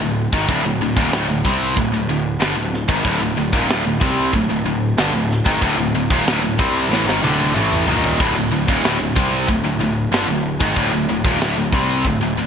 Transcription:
0.01 picked electric bass D1, distorted electric guitar D2 A2
0.33 picked electric bass G#1, distorted electric guitar G#2 D#3, kick
0.48 picked electric bass D1, distorted electric guitar D2 A2, kick, open hi-hat
0.64 picked electric bass D1, distorted electric guitar D2 A2
0.81 picked electric bass D1, distorted electric guitar D2 A2
0.97 picked electric bass D#1, distorted electric guitar D#2 A#2, kick
1.12 picked electric bass D1, distorted electric guitar D2 A2, snare, open hi-hat
1.29 picked electric bass D1, distorted electric guitar D2 A2
1.45 picked electric bass C2, distorted electric guitar C3 G3 C4, kick
1.77 picked electric bass D1, distorted electric guitar D2 A2, kick, open hi-hat
1.92 picked electric bass D1, distorted electric guitar D2 A2
2.08 picked electric bass D1, distorted electric guitar D2 A2
2.40 picked electric bass G1, distorted electric guitar G2 D3, snare, open hi-hat
2.56 picked electric bass D1, distorted electric guitar D2 A2
2.74 snare
2.89 picked electric bass G#1, distorted electric guitar G#2 D#3, kick
3.04 picked electric bass D1, distorted electric guitar D2 A2, kick, open hi-hat
3.21 picked electric bass D1, distorted electric guitar D2 A2
3.36 picked electric bass D1, distorted electric guitar D2 A2
3.53 picked electric bass D#1, distorted electric guitar D#2 A#2, kick
3.69 picked electric bass D1, distorted electric guitar D2 A2, snare, open hi-hat
3.85 picked electric bass D1, distorted electric guitar D2 A2
4.01 picked electric bass C2, distorted electric guitar C3 G3 C4, kick
4.33 picked electric bass D1, distorted electric guitar D2 A2, kick, open hi-hat
4.49 picked electric bass D1, distorted electric guitar D2 A2
4.66 picked electric bass D1, distorted electric guitar D2 A2
4.98 picked electric bass G1, distorted electric guitar G2 D3, snare, open hi-hat
5.14 picked electric bass D1, distorted electric guitar D2 A2
5.32 snare
5.45 picked electric bass G#1, distorted electric guitar G#2 D#3, kick
5.62 picked electric bass D1, distorted electric guitar D2 A2, kick, open hi-hat
5.78 picked electric bass D1, distorted electric guitar D2 A2
5.94 picked electric bass D1, distorted electric guitar D2 A2
6.10 picked electric bass D#1, distorted electric guitar D#2 A#2, kick
6.26 picked electric bass D1, distorted electric guitar D2 A2, snare, open hi-hat
6.41 picked electric bass D1, distorted electric guitar D2 A2
6.59 picked electric bass C2, distorted electric guitar C3 G3 C4, kick
6.89 picked electric bass A1, distorted electric guitar A2 E3, snare
7.05 picked electric bass G#1, distorted electric guitar G#2 D#3
7.09 snare
7.22 picked electric bass D1, distorted electric guitar D2 A2 D3, high tom
7.41 high tom
7.54 picked electric bass A1, distorted electric guitar A2 E3 A3, mid tom
7.72 mid tom
7.86 picked electric bass D#1, distorted electric guitar D#2 A#2 D#3, floor tom
8.04 floor tom
8.20 picked electric bass D1, distorted electric guitar D2 A2, kick, crash
8.36 picked electric bass D1, distorted electric guitar D2 A2
8.51 picked electric bass D1, distorted electric guitar D2 A2
8.67 picked electric bass D#1, distorted electric guitar D#2 A#2, kick
8.82 picked electric bass D1, distorted electric guitar D2 A2, snare, open hi-hat
8.99 picked electric bass D1, distorted electric guitar D2 A2
9.15 picked electric bass C2, distorted electric guitar C3 G3 C4, kick
9.48 picked electric bass D1, distorted electric guitar D2 A2, kick, open hi-hat
9.64 picked electric bass D1, distorted electric guitar D2 A2
9.80 picked electric bass D1, distorted electric guitar D2 A2
10.11 picked electric bass G1, distorted electric guitar G2 D3, snare, open hi-hat
10.28 picked electric bass D1, distorted electric guitar D2 A2
10.60 picked electric bass G#1, distorted electric guitar G#2 D#3, kick
10.76 picked electric bass D1, distorted electric guitar D2 A2, kick, open hi-hat
10.92 picked electric bass D1, distorted electric guitar D2 A2
11.09 picked electric bass D1, distorted electric guitar D2 A2
11.24 picked electric bass D#1, distorted electric guitar D#2 A#2, kick
11.40 picked electric bass D1, distorted electric guitar D2 A2, snare, open hi-hat
11.56 picked electric bass D1, distorted electric guitar D2 A2
11.72 picked electric bass C2, distorted electric guitar C3 G3 C4, kick
12.05 picked electric bass D1, distorted electric guitar D2 A2, kick, open hi-hat
12.20 picked electric bass D1, distorted electric guitar D2 A2
12.36 picked electric bass D1, distorted electric guitar D2 A2

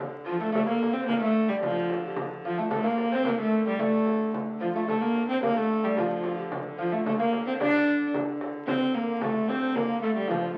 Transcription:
0.00 hurdy-gurdy D3, frame drum
0.26 lute F3, viola da gamba F3, pan flute F4, frame drum
0.40 lute A3, viola da gamba A3, pan flute A4
0.52 lute A3, viola da gamba A3, pan flute A4, frame drum
0.62 pan flute G4
0.67 lute A#3, viola da gamba A#3, pan flute A4
0.83 frame drum
0.93 viola da gamba C4, lute C4
0.99 pan flute C5
1.07 viola da gamba A#3, lute A#3, pan flute A#4, frame drum
1.22 viola da gamba A3, lute A3, pan flute A4
1.48 viola da gamba G3, lute G3, pan flute G4
1.63 lute F3, viola da gamba F3, pan flute F4, frame drum
1.90 frame drum
2.05 pan flute G4
2.16 frame drum
2.43 lute F3, viola da gamba F3, pan flute F4, frame drum
2.58 lute A3, viola da gamba A3
2.71 lute A3, viola da gamba A3, pan flute A4, frame drum
2.83 lute A#3, viola da gamba A#3, pan flute A#4
2.98 frame drum
3.10 lute C4, pan flute C5
3.15 viola da gamba C4
3.25 lute A#3, pan flute A#4, frame drum
3.29 viola da gamba A#3
3.38 viola da gamba A3, pan flute A4
3.66 lute G3, viola da gamba G3
3.79 lute A3, viola da gamba A3, pan flute A4, frame drum
4.07 frame drum
4.34 hurdy-gurdy D3, frame drum
4.60 viola da gamba F3, lute F3, pan flute F4
4.74 viola da gamba A3, lute A3
4.86 viola da gamba A3, lute A3, pan flute A4, frame drum
5.02 viola da gamba A#3, pan flute A#4
5.15 frame drum
5.29 viola da gamba C4, lute C4, pan flute C5
5.42 lute A#3, viola da gamba A#3, pan flute A#4, frame drum
5.55 lute A3, viola da gamba A3, pan flute A4
5.70 frame drum
5.83 lute G3, viola da gamba G3
5.97 lute F3, viola da gamba F3, pan flute F4, frame drum
6.24 frame drum
6.37 pan flute G4
6.52 frame drum
6.78 lute F3, viola da gamba F3, pan flute F4, frame drum
6.92 lute A3, viola da gamba A3
7.06 viola da gamba A3, lute A3, pan flute A4, frame drum
7.19 lute A#3, viola da gamba A#3, pan flute A#4
7.33 frame drum
7.47 viola da gamba C4, pan flute C5
7.60 lute D4, viola da gamba D4, pan flute D5, frame drum
7.88 frame drum
8.14 frame drum
8.41 frame drum
8.67 hurdy-gurdy D3, viola da gamba C4, lute C4, pan flute C5, frame drum
8.95 viola da gamba A#3, lute A#3, pan flute A#4
9.16 pan flute A#4
9.21 viola da gamba A3, lute A3, pan flute A4, frame drum
9.49 viola da gamba C4, lute C4, pan flute C5, frame drum
9.75 viola da gamba A#3, lute A#3, pan flute A#4, frame drum
10.02 viola da gamba A3, lute A3, pan flute A4
10.15 viola da gamba G3, pan flute G4
10.28 viola da gamba F3, lute F3, pan flute F4, frame drum

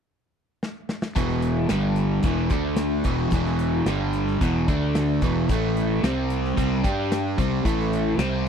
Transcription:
0.63 snare
0.89 snare
1.02 snare
1.15 fingered electric bass E1, overdriven electric guitar E2 B2 E3, kick, closed hi-hat
1.28 snare
1.42 closed hi-hat
1.69 fingered electric bass G1, overdriven electric guitar G2 D3 G3, snare, closed hi-hat
1.96 closed hi-hat
2.23 fingered electric bass E1, overdriven electric guitar E2 B2 E3, kick, closed hi-hat
2.50 fingered electric bass D2, overdriven electric guitar D3 A3 D4, kick, closed hi-hat
2.76 snare, closed hi-hat
3.04 fingered electric bass E1, overdriven electric guitar E2 B2 E3, kick, closed hi-hat
3.31 fingered electric bass E1, overdriven electric guitar E2 B2 E3, kick, closed hi-hat
3.45 snare
3.59 closed hi-hat
3.86 fingered electric bass G1, overdriven electric guitar G2 D3 G3, snare, closed hi-hat
4.13 closed hi-hat
4.27 snare
4.41 fingered electric bass E1, overdriven electric guitar E2 B2 E3, kick, closed hi-hat
4.68 fingered electric bass D2, overdriven electric guitar D3 A3 D4, kick, closed hi-hat
4.95 snare, closed hi-hat
5.22 fingered electric bass E1, overdriven electric guitar E2 B2 E3, kick, closed hi-hat
5.49 fingered electric bass A1, overdriven electric guitar A2 E3 A3, kick, closed hi-hat
5.77 closed hi-hat
6.03 fingered electric bass C2, overdriven electric guitar C3 G3 C4, snare, closed hi-hat
6.30 closed hi-hat
6.44 snare
6.57 fingered electric bass C2, overdriven electric guitar C3 G3 C4, kick, closed hi-hat
6.84 fingered electric bass G2, overdriven electric guitar G3 D4 G4, kick, closed hi-hat
7.12 snare, closed hi-hat
7.37 fingered electric bass C2, overdriven electric guitar C3 G3 C4, kick, closed hi-hat
7.65 fingered electric bass A1, overdriven electric guitar A2 E3 A3, kick, closed hi-hat
7.80 snare
7.93 closed hi-hat
8.18 fingered electric bass C2, overdriven electric guitar C3 G3 C4, snare, closed hi-hat

